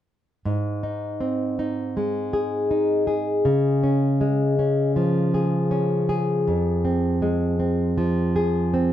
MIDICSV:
0, 0, Header, 1, 2, 480
1, 0, Start_track
1, 0, Key_signature, -4, "major"
1, 0, Tempo, 752823
1, 288, Time_signature, 4, 2, 24, 8
1, 5693, End_track
2, 0, Start_track
2, 0, Title_t, "Nylon-string guitar"
2, 0, Program_c, 0, 24
2, 290, Note_on_c, 0, 44, 62
2, 531, Note_on_c, 0, 63, 46
2, 768, Note_on_c, 0, 60, 47
2, 1007, Note_off_c, 0, 63, 0
2, 1014, Note_on_c, 0, 63, 46
2, 1255, Note_on_c, 0, 56, 55
2, 1488, Note_on_c, 0, 68, 48
2, 1719, Note_off_c, 0, 63, 0
2, 1727, Note_on_c, 0, 63, 49
2, 1956, Note_off_c, 0, 68, 0
2, 1959, Note_on_c, 0, 68, 56
2, 2200, Note_on_c, 0, 49, 66
2, 2209, Note_off_c, 0, 44, 0
2, 2260, Note_off_c, 0, 63, 0
2, 2261, Note_off_c, 0, 60, 0
2, 2445, Note_on_c, 0, 61, 48
2, 2683, Note_off_c, 0, 56, 0
2, 2683, Note_on_c, 0, 56, 52
2, 2919, Note_off_c, 0, 61, 0
2, 2926, Note_on_c, 0, 61, 49
2, 3163, Note_on_c, 0, 53, 57
2, 3404, Note_off_c, 0, 68, 0
2, 3406, Note_on_c, 0, 68, 51
2, 3633, Note_off_c, 0, 61, 0
2, 3641, Note_on_c, 0, 61, 53
2, 3881, Note_off_c, 0, 68, 0
2, 3884, Note_on_c, 0, 68, 57
2, 4125, Note_off_c, 0, 49, 0
2, 4129, Note_on_c, 0, 41, 65
2, 4178, Note_off_c, 0, 61, 0
2, 4365, Note_on_c, 0, 60, 49
2, 4602, Note_off_c, 0, 56, 0
2, 4604, Note_on_c, 0, 56, 52
2, 4834, Note_off_c, 0, 60, 0
2, 4842, Note_on_c, 0, 60, 49
2, 5082, Note_off_c, 0, 53, 0
2, 5085, Note_on_c, 0, 53, 58
2, 5326, Note_off_c, 0, 68, 0
2, 5329, Note_on_c, 0, 68, 56
2, 5563, Note_off_c, 0, 60, 0
2, 5571, Note_on_c, 0, 60, 53
2, 5693, Note_off_c, 0, 41, 0
2, 5693, Note_off_c, 0, 53, 0
2, 5693, Note_off_c, 0, 56, 0
2, 5693, Note_off_c, 0, 60, 0
2, 5693, Note_off_c, 0, 68, 0
2, 5693, End_track
0, 0, End_of_file